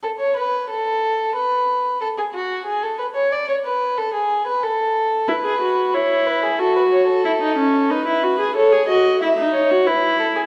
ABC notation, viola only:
X:1
M:4/4
L:1/16
Q:1/4=92
K:Bdor
V:1 name="Viola"
z16 | z16 | E G F2 E4 F4 E ^D C2 | ^D E F G A G F2 E D2 F E4 |]